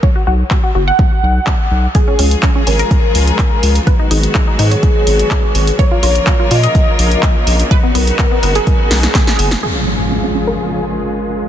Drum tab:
CC |----------------|----------------|----------------|----------------|
HH |----------------|x-oxx-oxx-oxx-ox|x-oxx-oxx-oxx-ox|x-oxx-oxx-oxx-ox|
CP |----x-------x---|----x-------x---|----x-------x---|----x-------x---|
SD |----------------|----------------|----------------|----------------|
BD |o---o---o---o---|o---o---o---o---|o---o---o---o---|o---o---o---o---|

CC |----------------|x---------------|
HH |x-oxx-oxx-oxx-ox|----------------|
CP |----x-------x---|----------------|
SD |----------oooo-o|----------------|
BD |o---o---o---o---|----------------|